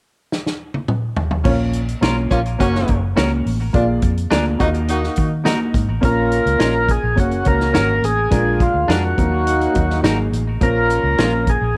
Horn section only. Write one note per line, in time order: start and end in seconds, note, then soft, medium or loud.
1.44 1.57 A#3 medium
1.44 1.57 C#4 medium
1.44 1.57 F4 medium
2.31 2.40 A#3 medium
2.31 2.40 C#4 medium
2.31 2.40 F4 loud
2.60 3.00 A#3 medium
2.60 3.00 C#4 medium
2.60 3.01 F#4 loud
3.73 3.86 A#3 medium
3.73 3.86 D4 medium
3.73 3.86 F4 medium
4.60 4.69 A#3 medium
4.60 4.69 D#4 medium
4.60 4.69 F#4 loud
4.89 5.29 A#3 medium
4.89 5.29 D#4 medium
4.89 5.29 F#4 medium
6.03 6.87 A#3 medium
6.03 6.87 C#4 medium
6.03 6.88 F4 medium
7.18 8.02 A#3 medium
7.18 8.02 C#4 medium
7.18 8.02 F#4 medium
8.32 8.88 A#3 medium
8.32 8.88 D4 medium
8.32 8.88 F4 medium
9.18 10.31 F#3 medium
9.18 10.31 A#3 medium
9.18 10.31 D#4 medium
10.62 11.46 A#3 medium
10.62 11.46 C#4 medium
10.62 11.46 F4 medium